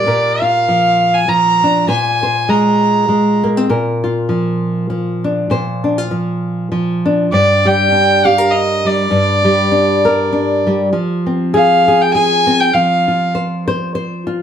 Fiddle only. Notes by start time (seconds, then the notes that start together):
Already playing: D5
0.41 F5
1.14 G#5
1.29 A#5
1.89 G#5
2.49 A#5
7.32 D5
7.67 G5
8.25 F5
8.51 D#5
8.86 D5
11.54 F5
12.01 G5
12.13 G#5
12.60 G5
12.73 F5